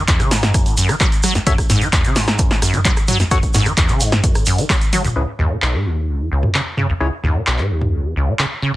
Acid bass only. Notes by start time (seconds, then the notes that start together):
0.08 E2
0.20 C#3
0.31 G#2
0.54 F#2
0.66 A2
0.77 F#2
0.89 E3
1.00 F#3
1.23 F#3
1.35 F#2
1.46 F#2
1.70 G#2
1.81 E3
1.93 E2
2.04 C#3
2.16 G#2
2.39 F#2
2.50 A2
2.62 F#2
2.74 E3
2.85 F#3
3.08 F#3
3.20 F#2
3.31 F#2
3.54 G#2
3.66 E3
3.77 E2
3.89 C#3
4.00 G#2
4.24 F#2
4.35 A2
4.47 F#2
4.58 E3
4.70 F#3
4.93 F#3
5.04 F#2
5.16 C#2
5.39 D#2
5.51 B2
5.62 B1
5.74 G#2
5.85 D#2
6.08 C#2
6.20 E2
6.32 C#2
6.43 B2
6.55 C#3
6.78 C#3
6.89 C#2
7.01 C#2
7.24 D#2
7.35 B2
7.47 B1
7.58 G#2
7.70 D#2
7.93 C#2
8.05 E2
8.16 C#2
8.28 B2
8.39 C#3
8.62 C#3